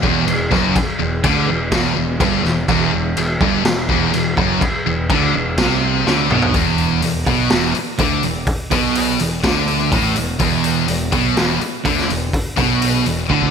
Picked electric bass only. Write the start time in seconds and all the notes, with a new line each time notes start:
0.04 E1
0.28 E1
0.52 F#1
1.00 E1
1.24 D2
1.48 E1
1.72 E1
1.97 E1
2.20 G1
2.45 E1
2.69 E1
2.93 E1
3.18 E1
3.41 G1
3.66 E1
3.89 E1
4.15 E1
4.37 F#1
4.87 E1
5.10 D2
5.35 E1
5.58 C2
6.07 D2
6.31 B1
6.54 E1
7.02 E1
7.27 B1
7.52 E1
7.77 muted picked electric bass stroke
7.99 D2
8.24 E1
8.71 B1
9.21 E1
9.44 D2
9.92 A1
10.17 E1
10.40 E1
10.89 E1
11.13 B1
11.37 E1
11.62 muted picked electric bass stroke
11.85 D2
12.10 E1
12.58 B1
13.06 E1
13.30 D2